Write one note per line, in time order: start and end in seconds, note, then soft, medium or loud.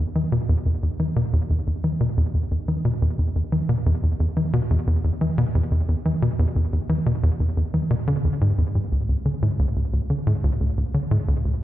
0.15 0.23 E3 medium
0.32 0.40 B2 medium
0.49 0.57 E2 medium
0.66 0.77 E2 medium
0.83 0.90 E2 medium
1.00 1.07 E3 medium
1.16 1.24 B2 medium
1.33 1.41 E2 medium
1.50 1.62 E2 medium
1.67 1.75 E2 medium
1.84 1.92 E3 medium
2.00 2.08 B2 medium
2.17 2.25 E2 loud
2.34 2.46 E2 medium
2.51 2.59 E2 medium
2.68 2.76 E3 medium
2.85 2.93 B2 medium
3.02 3.10 E2 medium
3.19 3.30 E2 medium
3.35 3.43 E2 medium
3.52 3.60 E3 medium
3.69 3.77 B2 loud
3.86 3.94 E2 loud
4.03 4.15 E2 medium
4.20 4.27 E2 medium
4.37 4.44 E3 medium
4.53 4.61 B2 loud
4.70 4.78 E2 medium
4.87 4.99 E2 medium
5.04 5.12 E2 medium
5.21 5.29 E3 medium
5.38 5.46 B2 loud
5.55 5.62 E2 medium
5.71 5.83 E2 medium
5.88 5.96 E2 medium
6.05 6.13 E3 medium
6.22 6.30 B2 medium
6.39 6.47 E2 loud
6.56 6.67 E2 medium
6.73 6.80 E2 medium
6.89 6.97 E3 medium
7.06 7.14 B2 medium
7.23 7.31 E2 loud
7.40 7.51 E2 medium
7.57 7.65 E2 medium
7.74 7.81 E3 medium
7.90 7.95 B2 loud
8.07 8.19 D3 loud
8.24 8.29 E2 medium
8.41 8.53 G#2 medium
8.58 8.66 E2 medium
8.75 8.80 G#2 medium
8.92 9.03 D2 medium
9.09 9.16 D2 medium
9.25 9.33 D3 medium
9.42 9.50 A2 medium
9.59 9.67 D2 loud
9.76 9.88 D2 medium
9.93 10.01 D2 medium
10.10 10.17 D3 medium
10.27 10.34 A2 loud
10.44 10.51 D2 medium
10.60 10.72 D2 medium
10.77 10.85 D2 medium
10.94 11.02 D3 medium
11.11 11.19 A2 loud
11.28 11.35 D2 loud
11.45 11.56 D2 medium